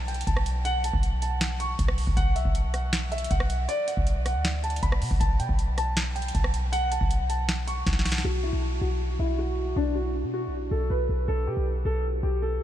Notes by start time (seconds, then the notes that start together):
Already playing: B1
0.08 G5, closed hi-hat
0.14 closed hi-hat
0.21 closed hi-hat
0.27 B1 A5, kick, closed hi-hat
0.37 cross-stick
0.46 closed hi-hat
0.65 F#5, closed hi-hat
0.84 A5, closed hi-hat
0.94 B1, kick
1.03 closed hi-hat
1.22 A5, closed hi-hat
1.41 snare, closed hi-hat
1.60 C#6, closed hi-hat
1.79 B1, kick, closed hi-hat
1.88 cross-stick
1.98 open hi-hat
2.07 B1, kick
2.17 B1 F#5, kick, closed hi-hat
2.36 E5, closed hi-hat
2.45 B1, kick
2.55 closed hi-hat
2.74 F#5, cross-stick, closed hi-hat
2.93 snare, closed hi-hat
3.12 E5, closed hi-hat
3.18 closed hi-hat
3.24 closed hi-hat
3.31 B1 F#5, kick, closed hi-hat
3.40 cross-stick
3.50 closed hi-hat
3.69 D5, closed hi-hat
3.88 F#5, closed hi-hat
3.97 B1, kick
4.07 closed hi-hat
4.26 F#5, cross-stick, closed hi-hat
4.35 D2
4.45 snare, closed hi-hat
4.64 A5, closed hi-hat
4.70 closed hi-hat
4.76 closed hi-hat
4.83 B1 B5, kick, closed hi-hat
4.92 cross-stick
5.02 B2, open hi-hat
5.11 B1, kick
5.20 B1 A5, kick, closed hi-hat
5.40 B2 G5, closed hi-hat
5.49 B1, kick
5.59 closed hi-hat
5.78 A5, cross-stick, closed hi-hat
5.97 snare, closed hi-hat
6.15 G5, closed hi-hat
6.22 closed hi-hat
6.28 closed hi-hat
6.34 B1 A5, kick, closed hi-hat
6.44 cross-stick
6.54 closed hi-hat
6.72 F#5, closed hi-hat
6.92 A5, closed hi-hat
7.01 B1, kick
7.11 closed hi-hat
7.30 A5, closed hi-hat
7.49 snare, closed hi-hat
7.67 C#6, closed hi-hat
7.87 B1, kick, snare, closed hi-hat
7.93 snare
7.99 snare
8.06 snare, open hi-hat
8.12 snare
8.18 snare
8.24 B1 F#4
8.43 E4
8.53 B1
8.81 B1 F#4
9.19 B1 E4
9.39 F#4
9.76 B1 D4
9.95 F#4
10.24 B2
10.34 F#4
10.47 B1
10.71 B1 A4
10.90 B1 B4
11.09 B1
11.28 B1 A4
11.47 B2 G4
11.57 B1
11.85 B1 A4
12.23 B1 G4
12.42 A4